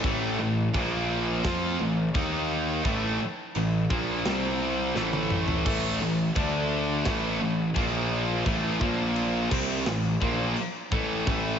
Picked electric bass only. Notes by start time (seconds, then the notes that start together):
0.04 A1
0.40 A1
0.74 A#1
1.44 F2
1.81 A1
2.15 D#2
2.85 A1
3.56 A1
3.90 A#1
4.26 C2
4.96 A1
5.66 A1
6.01 A1
6.36 D2
7.06 A1
7.43 A1
7.76 A#1
8.46 A1
8.81 A#1
9.51 C2
9.87 A1
10.22 A#1
10.92 A1
11.27 A1